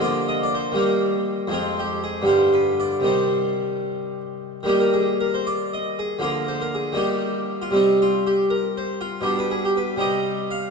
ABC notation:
X:1
M:6/8
L:1/16
Q:3/8=79
K:Cm
V:1 name="Harpsichord"
d2 e d c2 B2 z4 | F2 G2 A2 c2 =B2 d2 | c8- c2 z2 | [K:Eb] G B A2 B c d2 e2 A2 |
B2 c B A2 G4- G F | E2 F2 G2 B2 c2 F2 | G =B A G B2 e4 f2 |]
V:2 name="Harpsichord" clef=bass
[D,F,B,F]6 [E,G,B,E]6 | [F,,F,A,C]6 [G,,D,G,F]6 | [C,E,G,E]12 | [K:Eb] [E,G,B,E]12 |
[D,F,B,F]6 [E,G,B,E]6 | [C,G,C]12 | [=B,,G,D]6 [C,G,EG]6 |]